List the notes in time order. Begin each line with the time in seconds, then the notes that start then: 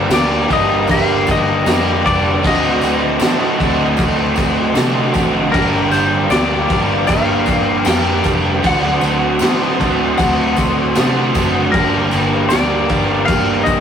Already playing: G2 D3 D4 G4 C5 F5 A#5 D6
0.10 D2 G2 D3 G3 A#3 D4 G4 D5, snare, tambourine, crash
0.49 G1 G2 D3 G3 A#3 D4 G4, kick, tambourine, crash
0.53 D#5
0.87 G1 G2 D3 G3 A#3 G4 F5, kick, tambourine, crash
0.92 D4
1.26 G1 G3 A#3 D4 G4, kick, tambourine, crash
1.31 D#5
1.65 F2 G2 D3 G3 A#3 D4 G4, snare, tambourine, crash
2.04 F1 G2 D3 G3 A#3 D4 G4 D5, kick, crash
2.08 G3
2.41 D2 D3 A3 C4 D4 F#4 D#5 C6 D6, kick, tambourine, crash
2.45 F#4 D#5
2.81 D2 C4 F#4, tambourine, crash
2.86 A3
3.19 A2 D3 A3 C4 D4 F#4, snare, tambourine, crash
3.58 D2 D3 A3 C4 D4 F#4, kick, tambourine, crash
3.97 D2 D3 A3 C4 D4 F#4, kick, tambourine, crash
4.36 D2 A3 C4 F#4, kick, tambourine, crash
4.73 C3 D3 A3 C4 D4 F#4, snare, tambourine, crash
4.77 F#4
5.13 A1 D3 A3 C4 D4 F#4, kick, tambourine, crash
5.51 G1 G2 D3 G3 A#3 D4 G4 A#4 F5, kick, tambourine, crash
5.55 G4 A#5
5.90 G1 G3 A#3 D4 G4 C5, tambourine, crash
6.28 D2 G2 D3 G3 A#3 D4 G4 D5, tambourine, crash
6.32 D4 G4, snare
6.68 G1 G2 D3 G3 A#3 D4 G4, kick, tambourine, crash
7.07 G1 G2 D3 G3 A#3 D4 G4 F5, kick, tambourine, crash
7.46 G1 D4 G4, kick, tambourine, crash
7.50 A#3
7.85 F2 G2 D3 G3 A#3 D4 G4 G5, snare, tambourine, crash
7.89 G4
8.24 F1 G2 D3 G3 A#3 D4 G4, kick, tambourine, crash
8.61 D2 D3 F#3 A3 C4 D4 F#4 D5 C6 D#6, kick, tambourine, crash
8.66 A3 D4 F#4 C5 F#5
9.00 D2 A3 C4 F#4, tambourine, crash
9.39 A2 D3 A3 C4 D4, snare, tambourine, crash
9.43 F#4 C5
9.79 D2 D3 A3 C4 D4 F#4, kick, tambourine, crash
9.84 A3
10.18 D2 D3 F#3 A3 D4 F#4 C5 F#5, kick, tambourine, crash
10.56 D2 D4 F#4 C5, kick, tambourine, crash
10.61 A3
10.95 C3 D3 A3 C4 D4 F#4, snare, tambourine, crash
11.00 C5
11.34 F#1 D3 A3 C4 D4 F#4, kick, tambourine, crash
11.72 G1 G2 D3 G3 A#3 D4 G4 A#4 F5 A#5 D6, kick, tambourine, crash
11.76 G4
12.11 G1 G3 A#3 D4 G4, tambourine, crash
12.49 D2 G2 D3 G3 A#3 D4 G4 D5, snare, tambourine, crash
12.88 G1 G2 D3 G3 A#3 D4 G4, kick, tambourine, crash
13.26 G1 G2 D3 G3 A#3 D4 F5, kick, tambourine, crash
13.30 G4
13.64 G1 D4 G4 D#5, kick, tambourine, crash
13.68 A#3